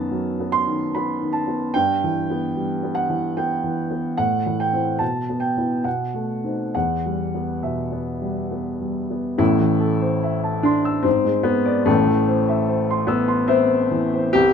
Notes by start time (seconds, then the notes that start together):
Already playing: F#2 D#3 B3 A5
0.11 F#3
0.40 B3
0.52 C6
0.67 D#3
0.95 B3 B5
1.21 D#3
1.33 A5
1.48 B3
1.74 G2 G5
2.04 E3
2.30 B3
2.57 G3
2.83 B3
2.95 F#5
3.10 E3
3.37 B3 G5
3.64 E3
3.91 B3
4.17 A2 F#5
4.46 E3
4.60 G5
4.73 C4 E4
4.99 B2 A5
5.30 B3
5.40 G5
5.58 B3 E4
5.84 B2 F#5
6.14 A3
6.44 C4 D#4
6.75 E2 F#5
7.06 G3
7.35 B3
7.63 B2 E5
7.92 B3
8.22 G3
8.51 B3
8.81 G3
9.11 B3
9.38 A1 A2 E4
9.60 E3
9.80 A4
10.01 C5
10.23 E5
10.44 A5
10.63 D4 C6
10.85 E6
11.03 G#2 C4
11.25 G#3
11.43 B3 B4
11.66 D5
11.86 A1 A2 A3
12.07 E3
12.28 C5
12.48 E5
12.69 C5
12.91 C6
13.07 B3 E6
13.28 C6
13.48 C4 E5
13.68 C5
13.91 E3
14.13 C5
14.33 C2 G4